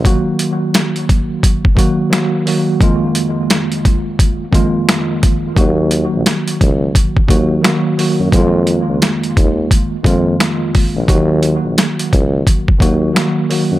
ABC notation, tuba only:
X:1
M:4/4
L:1/16
Q:"Swing 16ths" 1/4=87
K:Ebm
V:1 name="Tuba" clef=bass
z16 | z16 | E,,3 B,,, z2 D,,2 z2 E,,2 z3 G,, | F,,3 D,, z2 E,,2 z2 F,,2 z3 B,,, |
E,,3 B,,, z2 D,,2 z2 E,,2 z3 G,, |]